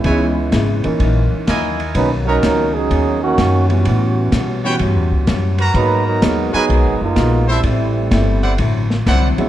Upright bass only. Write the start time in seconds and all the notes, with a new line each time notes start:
0.04 C#2
0.52 G#1
0.85 muted upright bass stroke
1.00 A#1
1.33 muted upright bass stroke
1.47 D#2
1.95 B1
2.43 C#2
2.91 D#2
3.38 F#2
3.86 A2
4.32 B2
4.80 G2
4.95 E2
5.11 C#2
5.27 F#2
5.74 G#2
6.22 D#2
6.54 muted upright bass stroke
6.69 B1
6.86 G#1
7.01 F#1
7.16 A#1
7.64 A1
8.11 G1
8.59 A1
9.06 C2